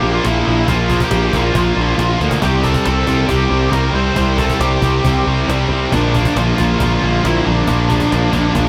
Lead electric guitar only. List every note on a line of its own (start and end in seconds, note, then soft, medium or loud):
0.00 0.10 G4 medium
0.00 0.15 G5 loud
0.13 0.24 F4 medium
0.13 0.26 F5 medium
0.26 0.66 E4 medium
0.26 0.69 E5 loud
0.69 0.99 F4 medium
0.69 1.02 F5 medium
1.04 1.33 G4 medium
1.04 1.36 G5 medium
1.34 2.17 F4 medium
1.34 2.17 F5 medium
2.44 2.63 G4 medium
2.44 2.65 G5 medium
2.64 2.85 A4 medium
2.64 2.85 A5 medium
2.86 3.26 A4 medium
2.86 3.27 A5 medium
3.27 3.69 G4 medium
3.27 3.74 G5 medium
3.72 3.93 A#4 medium
3.72 3.95 A#5 loud
3.95 4.36 C5 medium
3.95 4.37 C6 loud
4.38 4.58 A4 medium
4.38 4.60 A5 medium
4.60 5.22 G4 medium
4.60 5.21 G5 medium
5.94 6.33 D4 medium
5.94 6.39 D5 loud
6.37 6.77 F4 medium
6.37 6.82 F5 loud
6.83 7.22 F4 medium
6.83 7.26 F5 loud
7.26 7.45 E4 medium
7.26 7.47 E5 loud
7.44 8.69 D4 medium
7.44 8.69 D5 medium